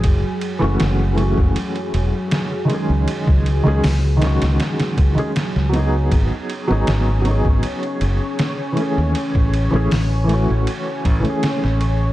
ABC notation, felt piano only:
X:1
M:4/4
L:1/16
Q:1/4=79
K:G#phr
V:1 name="Felt piano"
z3 [E,A,CF]3 [E,A,CF]8 [D,G,CG]2- | [D,G,CG]3 [D,G,CG] z2 [D,G,CF]4- [D,G,CF] [D,G,CG] z2 [F,B,DG]2- | [F,B,DG]3 [F,B,DG]3 [F,B,DG]8 [E,A,CG]2- | [E,A,CG]3 [E,A,CG] z2 [E,A,CF]4- [E,A,CF] [E,A,CG]4- [E,A,CG] |]